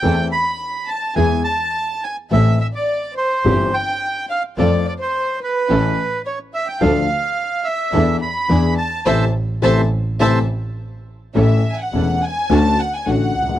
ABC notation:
X:1
M:4/4
L:1/16
Q:1/4=106
K:Am
V:1 name="Violin section"
g2 b4 a2 ^g2 a4 g2 | e2 e d3 c4 g4 f2 | d2 d c3 B6 ^c2 e g | f6 e4 b4 a2 |
[cea]2 z2 [cea]2 z2 [cea]2 z6 | [K:A] e2- e/2 g/2 f3 g2 a2 f g f4 |]
V:2 name="Bandoneon"
g2 b4 a2 ^g2 a4 g2 | e2 e d3 c4 g4 f2 | d2 d c3 B6 ^c2 e g | f6 e4 b4 a2 |
[cea]2 z2 [cea]2 z2 [cea]2 z6 | [K:A] z16 |]
V:3 name="String section"
[CEA]2 z6 [B,E^G]2 z6 | [CEA]2 z6 [CEG]2 z6 | [CFA]2 z6 [^CEA]2 z6 | [DFA]2 z6 [DEA]2 z2 [DE^G]2 z2 |
[CEA]2 z2 [CEA]2 z2 [CEA]2 z6 | [K:A] [CEA]2 z2 [CEA]2 z2 [CDF]2 z2 [CDF]2 z2 |]
V:4 name="Grand piano" clef=bass
[E,,E,A,CA]2 z6 [E,,E,^G,B,^G]2 z6 | [A,,,A,,E,A,CA]2 z6 [G,,,G,,E,G,CG]2 z6 | [F,,F,A,CA]2 z6 [A,,,A,,E,A,^CA]2 z6 | [D,,D,F,A,DA]2 z6 [E,,E,B,DA]2 z2 [E,,E,B,D^G]2 z2 |
[C,E,A,]2 z2 [C,E,A,]2 z2 [C,E,A,]2 z6 | [K:A] [A,,,A,,E,A,CA]2 z2 [E,,,E,,E,A,CA]2 z2 [D,,D,A,CF]2 z2 [A,,,A,,D,A,CF]2 z/2 =C,,/2 ^C,,/2 z/2 |]
V:5 name="Double bass" clef=bass
E,,2 z6 E,,2 z6 | A,,,2 z6 G,,,2 z6 | F,,2 z6 A,,,2 z6 | D,,2 z6 E,,2 z2 E,,2 z2 |
A,,,2 z2 A,,,2 z2 A,,,2 z6 | [K:A] A,,,2 z2 E,,,2 z2 D,,2 z2 A,,,2 C,,2 |]